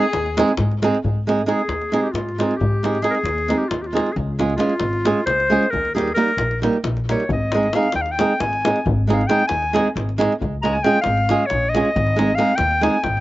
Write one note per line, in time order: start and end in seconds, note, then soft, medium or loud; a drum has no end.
0.00 0.56 G#4 medium
0.00 davul high soft
0.13 0.41 D#2 medium
0.13 davul high medium
0.26 davul high soft
0.37 0.50 G#3 medium
0.37 0.51 C4 medium
0.37 0.51 D#4 medium
0.37 0.52 G#4 medium
0.37 davul high medium
0.48 davul high soft
0.57 0.87 G#2 loud
0.57 davul high medium
0.57 davul low medium
0.72 davul high soft
0.82 0.96 G#3 medium
0.82 0.96 C4 medium
0.82 0.97 D#4 medium
0.82 0.97 G#4 medium
0.82 davul high medium
0.95 davul high soft
1.04 1.43 G#2 medium
1.04 davul low medium
1.27 1.40 G#3 medium
1.27 1.41 C4 medium
1.27 1.41 D#4 medium
1.27 1.42 G#4 medium
1.27 davul high medium
1.39 davul high soft
1.46 1.60 G#3 medium
1.46 1.60 C4 soft
1.46 1.61 D#4 medium
1.46 1.61 G#4 medium
1.46 2.01 G#4 medium
1.46 davul high medium
1.59 davul high soft
1.68 1.96 D#2 medium
1.68 davul high medium
1.82 davul high soft
1.92 2.06 G#3 medium
1.92 2.07 C4 medium
1.92 2.07 D#4 medium
1.92 2.07 G#4 medium
1.92 davul high medium
2.02 2.14 G4 medium
2.12 2.42 G#2 medium
2.12 2.58 F4 medium
2.12 davul high medium
2.29 davul high soft
2.38 2.53 G#3 medium
2.38 2.53 C4 medium
2.38 2.53 D#4 soft
2.38 2.54 G#4 medium
2.38 davul high medium
2.51 davul high soft
2.57 2.99 G#2 medium
2.57 3.04 G4 medium
2.61 davul low medium
2.83 2.97 G#3 medium
2.83 2.97 C4 soft
2.83 2.97 D#4 soft
2.83 2.98 G#4 medium
2.83 davul high medium
2.95 davul high soft
3.02 3.16 G#3 medium
3.02 3.17 C4 medium
3.02 3.17 D#4 medium
3.02 3.12 G#4 loud
3.02 3.17 G#4 medium
3.02 davul high medium
3.10 3.59 G#4 medium
3.10 3.13 A#4 medium
3.15 davul high soft
3.24 3.52 D#2 medium
3.24 davul high medium
3.38 davul high soft
3.48 3.62 G#3 medium
3.48 3.63 C4 medium
3.48 3.63 D#4 medium
3.48 3.64 G#4 medium
3.48 davul high medium
3.58 3.70 G4 medium
3.69 3.99 D#2 medium
3.69 3.84 F4 medium
3.69 davul high medium
3.82 3.88 G4 medium
3.82 davul high soft
3.87 4.14 F4 medium
3.93 4.08 G#3 medium
3.93 4.08 C4 medium
3.93 4.09 D#4 soft
3.93 4.09 G#4 medium
3.93 davul high medium
4.06 davul high soft
4.12 4.14 G#4 medium
4.16 4.55 C#2 loud
4.16 davul low medium
4.39 4.53 G#3 medium
4.39 4.53 C#4 medium
4.39 4.53 F4 medium
4.39 4.53 G#4 medium
4.39 davul high medium
4.50 davul high soft
4.56 4.72 G#3 medium
4.56 4.73 C#4 medium
4.56 5.25 F4 loud
4.56 4.73 F4 medium
4.56 4.73 G#4 medium
4.60 davul high medium
4.70 davul high soft
4.80 5.09 G#1 medium
4.80 davul high medium
4.93 davul high soft
5.05 5.19 G#3 medium
5.05 5.19 C#4 medium
5.05 5.19 F4 medium
5.05 5.20 G#4 medium
5.05 davul high medium
5.26 5.55 C#2 medium
5.26 5.72 C5 loud
5.26 davul high medium
5.40 davul high soft
5.50 5.64 G#3 medium
5.50 5.65 C#4 medium
5.50 5.65 F4 medium
5.50 5.66 G#4 medium
5.63 davul high soft
5.70 6.11 D#2 medium
5.70 5.94 A#4 loud
5.70 davul low medium
5.85 davul high soft
5.94 6.09 G3 medium
5.94 6.09 A#3 soft
5.94 6.09 D#4 soft
5.94 6.09 G4 medium
5.94 6.14 G#4 medium
5.94 davul high medium
6.08 davul high soft
6.14 6.29 G3 medium
6.14 6.30 A#3 medium
6.14 6.30 D#4 medium
6.14 6.30 G4 medium
6.14 6.58 A#4 loud
6.14 davul high medium
6.28 davul high soft
6.37 6.65 A#1 medium
6.37 davul high medium
6.51 davul high soft
6.62 6.75 G3 medium
6.62 6.76 A#3 soft
6.62 6.76 D#4 medium
6.62 6.76 G4 medium
6.62 davul high medium
6.73 davul high soft
6.84 7.11 A#1 medium
6.84 davul high medium
6.84 davul low medium
6.97 davul high soft
7.09 7.22 G3 medium
7.09 7.22 A#3 medium
7.09 7.23 D#4 medium
7.09 7.23 G4 medium
7.09 7.29 C#5 medium
7.09 davul high medium
7.20 davul high soft
7.29 7.68 G#1 loud
7.29 7.76 D#5 medium
7.29 davul low loud
7.52 7.66 G#3 medium
7.52 7.66 C4 soft
7.52 7.67 D#4 medium
7.52 davul high medium
7.57 7.68 G#4 medium
7.63 davul high soft
7.73 7.87 G#3 medium
7.73 7.87 C4 medium
7.73 7.87 D#4 medium
7.73 7.87 G#4 medium
7.73 7.94 F5 medium
7.73 davul high medium
7.83 davul high soft
7.92 8.22 D#2 medium
7.92 8.03 G5 medium
7.92 davul high medium
8.02 8.13 F5 medium
8.06 davul high soft
8.12 8.42 G5 medium
8.19 8.32 G#3 medium
8.19 8.32 C4 medium
8.19 8.32 D#4 medium
8.19 8.33 G#4 medium
8.19 davul high medium
8.40 8.68 G#1 medium
8.40 8.86 G#5 medium
8.40 davul high medium
8.53 davul high soft
8.65 8.78 G#3 medium
8.65 8.78 C4 medium
8.65 8.79 D#4 medium
8.65 8.79 G#4 medium
8.65 davul high medium
8.76 davul high soft
8.86 9.24 G#1 medium
8.86 davul low loud
9.07 9.21 G#3 medium
9.07 9.21 C4 medium
9.07 9.22 D#4 medium
9.07 9.22 G#4 medium
9.07 davul high medium
9.13 9.29 F5 medium
9.21 davul high soft
9.27 9.42 G#3 medium
9.27 9.42 C4 medium
9.27 9.42 D#4 medium
9.27 9.42 G#4 medium
9.27 9.47 G5 loud
9.27 davul high medium
9.40 davul high soft
9.47 9.78 D#2 medium
9.47 9.91 G#5 medium
9.47 davul high medium
9.62 davul high soft
9.73 9.87 G#3 medium
9.73 9.87 C4 medium
9.73 9.87 D#4 medium
9.73 9.87 G#4 medium
9.73 davul high medium
9.96 10.23 G#1 medium
9.96 davul high medium
10.09 davul high soft
10.18 10.32 G#3 medium
10.18 10.32 C4 medium
10.18 10.33 D#4 medium
10.18 10.33 G#4 medium
10.18 davul high medium
10.32 davul high soft
10.42 10.80 C#2 medium
10.42 davul low medium
10.62 10.76 G#3 medium
10.62 10.76 C#4 medium
10.62 10.77 F4 medium
10.62 10.77 G#4 medium
10.62 10.70 A#5 medium
10.62 davul high medium
10.70 10.85 G#5 medium
10.70 10.74 A#5 medium
10.75 davul high soft
10.83 10.97 G#3 medium
10.83 10.97 C#4 medium
10.83 10.98 F4 medium
10.83 10.98 G#4 medium
10.83 11.01 G5 loud
10.83 davul high medium
10.94 davul high soft
11.01 11.47 F5 loud
11.01 davul high medium
11.06 11.33 G#1 loud
11.17 davul high soft
11.29 11.42 G#3 medium
11.29 11.43 C#4 medium
11.29 11.43 F4 medium
11.29 11.43 G#4 medium
11.29 davul high medium
11.46 11.71 C#5 loud
11.50 11.79 A#1 medium
11.50 davul high medium
11.69 12.37 D#5 medium
11.74 11.88 G#3 medium
11.74 11.88 C#4 medium
11.74 11.88 F4 medium
11.74 11.89 G#4 medium
11.74 davul high medium
11.85 davul high soft
11.96 12.34 G#1 loud
11.96 davul low medium
12.07 davul high soft
12.16 12.30 G#3 medium
12.16 12.31 C4 medium
12.16 12.31 D#4 medium
12.16 12.31 G#4 medium
12.16 davul high medium
12.30 davul high soft
12.35 12.51 G#3 medium
12.35 12.52 C4 medium
12.35 12.57 F5 loud
12.35 davul high medium
12.39 12.52 D#4 medium
12.39 12.52 G#4 medium
12.49 davul high soft
12.56 12.87 D#2 loud
12.56 12.84 G5 medium
12.56 davul high medium
12.71 davul high soft
12.81 12.96 G#3 medium
12.81 12.96 C4 medium
12.81 12.96 D#4 medium
12.81 12.97 G#4 medium
12.81 13.05 G#5 medium
12.81 davul high medium
13.04 13.20 G#1 medium
13.04 13.20 G5 medium
13.04 davul high medium
13.04 davul low medium
13.17 davul high soft